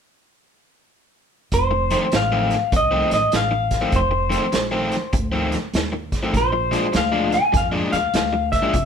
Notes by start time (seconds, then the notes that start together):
1.52 F1 C5, kick, closed hi-hat
1.71 muted overdriven electric guitar stroke
1.90 F2 D#3 A3 C4, snare, closed hi-hat
2.12 A1, muted overdriven electric guitar stroke, snare, closed hi-hat
2.16 F5
2.32 F2 D#3 A3 C4
2.50 snare, closed hi-hat
2.72 C2, muted overdriven electric guitar stroke, kick, closed hi-hat
2.76 D#5
2.91 F2 D#3 A3 C4
3.11 A1 D#5, snare, closed hi-hat
3.32 A1, snare, closed hi-hat
3.36 F5
3.51 muted overdriven electric guitar stroke
3.71 kick, snare, closed hi-hat
3.81 F2 D#3 A3 C4
3.92 F1 C5, kick, closed hi-hat
4.11 muted overdriven electric guitar stroke
4.30 F2 D#3 A3 C4, snare, closed hi-hat
4.52 A#1, muted overdriven electric guitar stroke, snare, closed hi-hat
4.71 F2 D#3 A3 C4
4.92 snare, closed hi-hat
5.13 D2, muted overdriven electric guitar stroke, kick, closed hi-hat
5.32 F2 D#3 A3 C4
5.52 snare, closed hi-hat
5.74 D#2, snare, closed hi-hat
5.92 muted overdriven electric guitar stroke
6.12 kick, snare, closed hi-hat
6.23 F2 D#3 A3 C4
6.34 A#1 C5, kick, snare, closed hi-hat
6.52 muted overdriven electric guitar stroke
6.71 A#2 F3 G#3 D4, snare, closed hi-hat
6.93 D2, muted overdriven electric guitar stroke, snare, closed hi-hat
6.97 F5
7.12 A#2 F3 G#3 D4
7.32 G#5, snare, closed hi-hat
7.52 F2, muted overdriven electric guitar stroke, kick, snare, closed hi-hat
7.57 F5
7.72 A#2 F3 G#3 D4
7.92 D2 F5, snare, closed hi-hat
8.14 D2, snare, closed hi-hat
8.33 muted overdriven electric guitar stroke
8.52 E5, kick, snare, closed hi-hat
8.62 A#2 F3 G#3 D4
8.74 C2, kick, closed hi-hat